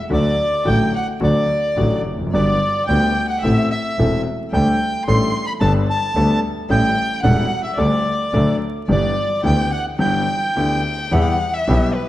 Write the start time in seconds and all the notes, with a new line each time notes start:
0.10 D2 D3 F#3 A3 F#4 D5
0.65 A1 A2 D3 F#3 A3 F#4 G5
0.95 F#5
1.20 D2 D3 F#3 A3 F#4 D5
1.76 A1 A2 D3 F#3 A3 F#4
2.05 F1
2.13 E2
2.19 F2
2.27 F#2
2.32 G1 G2 D3 G3 B3 F#4 D5
2.86 D2 D3 G3 B3 F#4 G5
3.28 F#5
3.41 A1 A2 E3 A3 C4 E5
3.45 A1 A4
3.69 E5
3.99 E1 E2 E3 A3 C4 A4
4.53 D2 D3 G3 A3 D4 A4 G5
5.06 A1 A2 G3 A3 D4 A4 C6
5.46 B5
5.60 G1 G2 G3 B3 D4 A4 A5
5.89 A5
6.15 D2 D3 G3 B3 D4 A4
6.69 A1 A2 G3 C#4 E4 A4 G5
7.23 E1 E2 G3 C#4 E4 A4 F#5
7.64 E5
7.77 D2 D3 G3 A3 D4 A4 D5
8.34 D2 D3 F#3 A3 D4 A4
8.89 G1 G2 E3 B3 D4 G4 D5
9.43 D2 D3 E3 B3 D4 G4 G5
9.71 F#5
9.99 G1 G2 E3 B3 D4 G4 G5
10.56 D2 D3 E3 B3 D4 G4 G5
11.11 E2 E3 G3 B3 E4 G4 F#5
11.53 E5
11.67 B1 B2 E3 G3 B3 E4 G4
11.95 B4